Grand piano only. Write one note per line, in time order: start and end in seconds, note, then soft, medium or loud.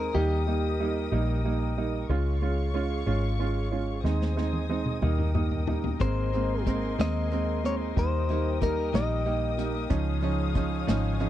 0.14 0.40 G3 medium
0.14 0.40 A#3 medium
0.14 0.41 D#4 medium
0.47 0.73 G3 medium
0.47 0.73 A#3 medium
0.47 0.73 D#4 medium
0.80 1.06 G3 medium
0.80 1.06 A#3 medium
0.80 1.06 D#4 medium
1.12 1.38 G3 medium
1.12 1.38 A#3 medium
1.12 1.38 D#4 medium
1.45 1.70 G3 medium
1.45 1.70 A#3 medium
1.45 1.71 D#4 medium
1.77 2.03 G3 medium
1.77 2.03 A#3 soft
1.77 2.03 D#4 medium
2.09 2.35 G#3 medium
2.09 2.35 C#4 medium
2.09 2.35 F4 medium
2.42 2.67 G#3 medium
2.42 2.68 C#4 medium
2.42 2.68 F4 medium
2.74 3.00 G#3 medium
2.74 3.00 C#4 medium
2.74 3.00 F4 medium
3.06 3.32 G#3 medium
3.06 3.32 C#4 medium
3.06 3.32 F4 medium
3.39 3.65 G#3 medium
3.39 3.65 C#4 medium
3.39 3.65 F4 medium
3.71 3.97 G#3 medium
3.71 3.97 C#4 soft
3.71 3.97 F4 medium
4.04 4.30 G#3 medium
4.04 4.30 C4 medium
4.04 4.30 D#4 medium
4.36 4.62 G#3 medium
4.36 4.62 C4 medium
4.36 4.63 D#4 medium
4.69 4.95 G#3 medium
4.69 4.95 C4 medium
4.69 4.96 D#4 medium
5.02 5.28 G3 medium
5.02 5.28 A#3 medium
5.02 5.28 D#4 medium
5.34 5.61 G3 medium
5.34 5.61 A#3 soft
5.34 5.61 D#4 medium
5.67 5.94 G3 medium
5.67 5.94 A#3 soft
5.67 5.94 D#4 medium
6.01 6.27 G#3 medium
6.01 6.27 A#3 medium
6.01 6.27 C4 medium
6.34 6.60 G#3 medium
6.34 6.60 A#3 medium
6.34 6.60 C4 medium
6.67 6.93 G#3 medium
6.67 6.93 A#3 medium
6.67 6.93 C4 medium
6.98 7.25 G#3 medium
6.98 7.25 A#3 medium
6.98 7.25 C4 medium
7.32 7.58 G#3 medium
7.32 7.58 A#3 medium
7.32 7.58 C4 medium
7.64 7.90 G#3 medium
7.64 7.90 A#3 soft
7.64 7.90 C4 medium
7.96 8.22 G3 medium
7.96 8.23 A#3 medium
7.96 8.23 D#4 medium
8.30 8.55 G3 medium
8.30 8.55 A#3 medium
8.30 8.55 D#4 medium
8.61 8.87 G3 medium
8.61 8.87 A#3 medium
8.61 8.88 D#4 medium
8.94 9.20 G3 medium
8.94 9.20 A#3 medium
8.94 9.20 D#4 medium
9.26 9.52 G3 medium
9.26 9.52 A#3 medium
9.26 9.52 D#4 medium
9.58 9.84 G3 medium
9.58 9.84 A#3 medium
9.58 9.84 D#4 medium
9.90 10.16 F3 medium
9.90 10.16 C#4 medium
9.90 10.16 D#4 medium
10.22 10.48 F3 medium
10.22 10.49 C#4 medium
10.22 10.49 D#4 medium
10.55 10.81 F3 medium
10.55 10.81 C#4 medium
10.55 10.81 D#4 medium
10.87 11.14 F3 medium
10.87 11.14 C#4 medium
10.87 11.14 D#4 medium
11.20 11.29 F3 medium
11.20 11.29 C#4 medium
11.20 11.29 D#4 medium